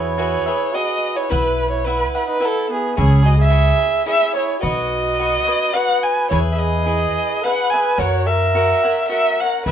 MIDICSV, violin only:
0, 0, Header, 1, 2, 480
1, 0, Start_track
1, 0, Key_signature, 4, "major"
1, 0, Tempo, 557621
1, 1127, Time_signature, 3, 2, 24, 8
1, 8363, End_track
2, 0, Start_track
2, 0, Title_t, "Violin"
2, 0, Program_c, 0, 40
2, 0, Note_on_c, 0, 73, 80
2, 636, Note_on_c, 0, 75, 82
2, 649, Note_off_c, 0, 73, 0
2, 999, Note_on_c, 0, 73, 79
2, 1012, Note_off_c, 0, 75, 0
2, 1121, Note_on_c, 0, 71, 87
2, 1134, Note_off_c, 0, 73, 0
2, 1466, Note_off_c, 0, 71, 0
2, 1471, Note_on_c, 0, 73, 71
2, 1592, Note_on_c, 0, 71, 70
2, 1605, Note_off_c, 0, 73, 0
2, 1960, Note_off_c, 0, 71, 0
2, 1965, Note_on_c, 0, 71, 77
2, 2109, Note_on_c, 0, 69, 85
2, 2122, Note_off_c, 0, 71, 0
2, 2345, Note_off_c, 0, 69, 0
2, 2358, Note_on_c, 0, 68, 62
2, 2561, Note_off_c, 0, 68, 0
2, 2567, Note_on_c, 0, 68, 74
2, 2806, Note_on_c, 0, 75, 76
2, 2819, Note_off_c, 0, 68, 0
2, 2922, Note_off_c, 0, 75, 0
2, 2935, Note_on_c, 0, 76, 98
2, 3485, Note_off_c, 0, 76, 0
2, 3516, Note_on_c, 0, 76, 110
2, 3744, Note_off_c, 0, 76, 0
2, 3749, Note_on_c, 0, 73, 75
2, 3969, Note_off_c, 0, 73, 0
2, 3986, Note_on_c, 0, 75, 92
2, 4939, Note_on_c, 0, 78, 94
2, 4952, Note_off_c, 0, 75, 0
2, 5191, Note_on_c, 0, 80, 78
2, 5204, Note_off_c, 0, 78, 0
2, 5413, Note_off_c, 0, 80, 0
2, 5418, Note_on_c, 0, 73, 78
2, 5508, Note_off_c, 0, 73, 0
2, 5613, Note_on_c, 0, 76, 63
2, 5666, Note_on_c, 0, 75, 73
2, 5679, Note_off_c, 0, 76, 0
2, 6401, Note_on_c, 0, 78, 88
2, 6414, Note_off_c, 0, 75, 0
2, 6626, Note_on_c, 0, 80, 78
2, 6639, Note_off_c, 0, 78, 0
2, 6875, Note_on_c, 0, 73, 82
2, 6887, Note_off_c, 0, 80, 0
2, 7119, Note_on_c, 0, 76, 86
2, 7131, Note_off_c, 0, 73, 0
2, 7816, Note_off_c, 0, 76, 0
2, 7821, Note_on_c, 0, 76, 100
2, 8092, Note_on_c, 0, 78, 80
2, 8105, Note_off_c, 0, 76, 0
2, 8313, Note_off_c, 0, 78, 0
2, 8318, Note_on_c, 0, 71, 75
2, 8363, Note_off_c, 0, 71, 0
2, 8363, End_track
0, 0, End_of_file